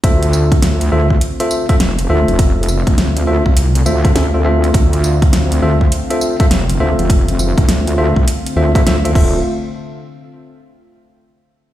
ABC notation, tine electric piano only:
X:1
M:4/4
L:1/16
Q:"Swing 16ths" 1/4=102
K:Dm
V:1 name="Tine electric piano"
[FAce]6 [FAce] z2 [FAce]2 [FAce] z2 [FAce]2- | [FAce]6 [FAce] z3 [FAce] [FAce] [FAce] [FAce] [FAce]2- | [FAce]6 [FAce] z2 [FAce]2 [FAce] z2 [FAce]2- | [FAce]6 [FAce] z3 [FAce] [FAce] [FAce] [FAce] [FAce]2 |
z16 |]